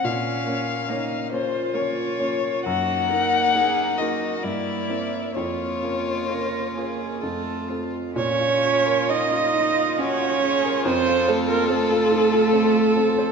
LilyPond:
<<
  \new Staff \with { instrumentName = "Violin" } { \time 3/4 \key bes \minor \tempo 4 = 67 f''4. c''8 des''4 | ges''4. ees''8 d''4 | des''2 r4 | f'2 ges'8 aes'8 |
a'2. | }
  \new Staff \with { instrumentName = "Viola" } { \time 3/4 \key bes \minor r4 bes4 bes4 | bes2 bes4 | bes2 a4 | des''4 ees''4 des''4 |
c''8 a'16 bes'16 a'2 | }
  \new Staff \with { instrumentName = "Cello" } { \time 3/4 \key bes \minor des'4 ees'8 f'4. | ges'8 bes'8 aes'8 ges'8 e'4 | f'4 bes'8 aes'8 a'8 f'8 | des'4 ees'4 des'4 |
c'8 a16 bes16 a2 | }
  \new Staff \with { instrumentName = "Violin" } { \time 3/4 \key bes \minor r4 des'4 des'4 | ees'2 e'4 | f'2 f'4 | f'2.~ |
f'2. | }
  \new Staff \with { instrumentName = "Grand piano" } { \time 3/4 \key bes \minor bes,8 <bes des' des''>8 <bes des' des''>8 <bes des' des''>8 <bes des' des''>8 <bes des' des''>8 | ges,8 <bes ees' bes'>8 <bes ees' bes'>8 <bes ees' bes'>8 g,8 <c' e' bes'>8 | f,8 <des' f' bes'>8 <des' f' bes'>8 <des' f' bes'>8 f,8 <c' f' a'>8 | bes,16 f'16 des''16 bes'16 des'16 f'16 ees'16 f'16 des'16 f'16 des'16 bes'16 |
f,16 f'16 c''16 f'16 c'16 f'16 ees'16 f'16 c'16 f'16 c'16 c''16 | }
>>